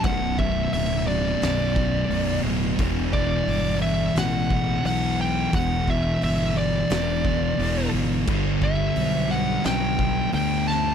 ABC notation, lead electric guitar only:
X:1
M:4/4
L:1/8
Q:1/4=88
K:Edor
V:1 name="Lead electric guitar"
f e e d4 z | z d2 e f2 f g | f e e d4 z | z e2 f g2 g a |]